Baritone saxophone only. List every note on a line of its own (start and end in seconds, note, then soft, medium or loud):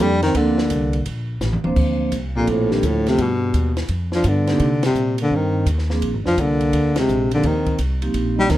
0.02 0.22 G3 medium
0.22 0.38 D#3 medium
0.36 1.06 D3 medium
2.36 2.51 A#2 medium
2.50 2.73 A2 medium
2.71 2.88 G2 medium
2.86 3.10 A2 medium
3.08 3.23 C3 medium
3.22 3.79 B2 medium
4.15 4.29 F3 medium
4.28 4.85 D3 medium
4.86 5.18 C3 medium
5.23 5.37 D3 medium
5.35 5.69 D#3 medium
6.27 6.42 F3 medium
6.40 6.97 D3 medium
6.99 7.30 C3 medium
7.34 7.47 D3 medium
7.46 7.80 D#3 medium
8.40 8.52 G3 loud
8.51 8.58 D#3 medium